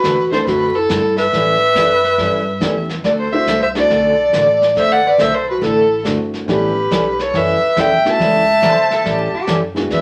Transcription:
Already playing: F#4 B4
0.04 E2 D3 A3 C4 F#4 A4, kick, snare, hi-hat pedal
0.31 A3 C4 D4 E4 A4 C5, snare
0.46 F#2 D3 A3 C4 F#4 A4 B4, brush sweep, kick, snare
0.75 E4 A4
0.89 G2 D3 A3 C4 F#4 A4, kick, snare, hi-hat pedal
1.17 B4 E5, snare
1.32 A2 E3 G3 C#4 E4 A4, brush sweep, kick, snare
1.75 F#2 E3 G3 C#4 E4 A4, kick, snare, hi-hat pedal
2.04 snare
2.18 G2 E3 G3 C#4 E4 A4, brush sweep, kick, snare
2.60 E2 E3 G3 A3 B3 C#4 E4 G4 A4, kick, snare, hi-hat pedal
2.89 snare
3.04 D2 D3 A3 C4 F#4 A4 D5, brush sweep, kick, snare
3.19 A4 C5
3.31 A3 C4 D4 E4 F#4 C5 E5
3.47 C2 D3 A3 C4 F#4 A4, kick, snare, hi-hat pedal
3.62 C5 E5
3.75 A3 C4 D4 E4 F#4 A4 D5, snare
3.90 B1 D3 A3 C4 F#4 A4, brush sweep, kick, snare
4.33 A1 D3 A3 C4 F#4 A4, kick, snare, hi-hat pedal
4.62 snare
4.75 D2 D3 A3 C4 F#4 A4 C5 E5, brush sweep, kick, snare
4.92 D5 F#5
5.05 B4 D5, muted upright bass stroke
5.18 B1 D3 A3 C4 F#4 A4 C5 E5, kick, snare, hi-hat pedal
5.35 A4 C5
5.49 F#4 B4
5.61 A1 D3 A3 C4 E4 F#4 A4, brush sweep, kick, snare
6.04 G1 D3 A3 C4 D4 E4 F#4 A4, kick, snare, hi-hat pedal
6.34 snare
6.46 A1 E3 G3 A3 B3 C#4 E4 G4 A4 B4, brush sweep, kick, snare
6.91 B1 E3 G3 C#4 E4 A4, kick, snare, hi-hat pedal
7.19 A4 C#5, snare
7.33 F#2 E3 G3 C#4 E4 A4 E5, brush sweep, kick, snare
7.37 B4
7.61 muted upright bass stroke
7.76 E2 E3 G3 C#4 E4 A4 E5 G5, kick, snare, hi-hat pedal
8.04 A3 B3 C#4 E4 F#4 E5, muted upright bass stroke, snare
8.09 A5
8.18 C#2 E3 G3 C#4 E4 A4, brush sweep, kick, snare
8.61 C#3 E3 G3 C#4 E4 A4 C5, kick, snare, hi-hat pedal
8.91 A4, snare
9.04 A2 E3 G3 C#4 E4 G4 A4, brush sweep, kick, snare
9.33 G4, muted upright bass stroke
9.47 F#2 E3 G3 C#4 E4 A4, kick, snare, hi-hat pedal
9.75 G#3 B3 D4 E4 F#4, snare
9.90 E2 E3 B3 D4 G#4 B4 E5, brush sweep, kick, snare

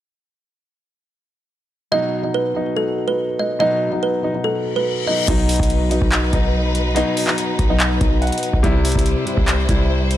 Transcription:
1.92 B2 F#3 D#4 D#5
2.22 B2 F#3 D#4
2.34 B4
2.54 B2 F#3 D#4
2.77 A4
3.08 B4
3.39 D#5
3.59 B2 F#3 D#4 D#5
3.90 B2 F#3 D#4
4.03 B4
4.22 B2 F#3 D#4
4.33 B2 F#3 D#4
4.44 A4, reverse cymbal
4.76 B4
5.06 B2 F#3 D#4 D#5
5.27 B1 B2 F#3 D#4 B4, kick, closed hi-hat, crash
5.49 closed hi-hat, open hi-hat
5.56 B1, kick, closed hi-hat
5.63 closed hi-hat
5.70 closed hi-hat
5.89 B2 F#3 D#4, closed hi-hat
6.02 B1, kick
6.12 clap, closed hi-hat
6.32 B1 B2 F#3 D#4, kick, closed hi-hat
6.75 closed hi-hat
6.95 B2 F#3 D#4, closed hi-hat
7.17 open hi-hat
7.26 B2 F#3 D#4, clap
7.38 closed hi-hat
7.59 B1 B4, kick, closed hi-hat
7.68 B2 F#3 D#4
7.80 D#5, clap, closed hi-hat
8.01 B1, kick, closed hi-hat
8.22 F#5, closed hi-hat
8.27 closed hi-hat
8.32 closed hi-hat
8.38 closed hi-hat
8.43 closed hi-hat
8.53 B1, kick
8.63 C2 C3 G3 E4 C5, kick, closed hi-hat
8.85 closed hi-hat, open hi-hat
8.92 C2, kick, closed hi-hat
8.99 closed hi-hat
9.06 closed hi-hat
9.25 C3 G3 E4, closed hi-hat
9.37 C2, kick
9.48 clap, closed hi-hat
9.68 C2 C3 G3 E4, kick, closed hi-hat
10.11 closed hi-hat

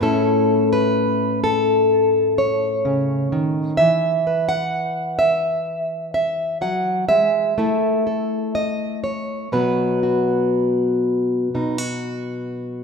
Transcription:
0.01 A2 A3 C#4 E4 A4
0.73 B4
1.44 A4
2.38 C#5
2.85 C#3
3.32 D#3
3.77 E3 E5
4.27 B4
4.49 F#5
5.19 E5
6.14 E5
6.61 F#3 F#5
7.09 G#3 E5
7.58 A3 E4 A4
8.07 A4
8.55 D#5
9.04 C#5
9.52 B2 F#3 B3 F#4 B4
10.03 F#4
11.55 B2 D#4
11.78 F#4

